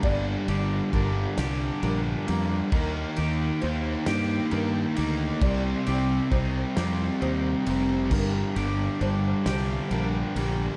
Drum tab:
CC |------|------|------|x-----|
RD |xxxxxx|xxxxxx|xxxxxx|-xxxxx|
SD |---o--|---o--|---o--|---o--|
BD |o-o---|o-----|o-o---|o-----|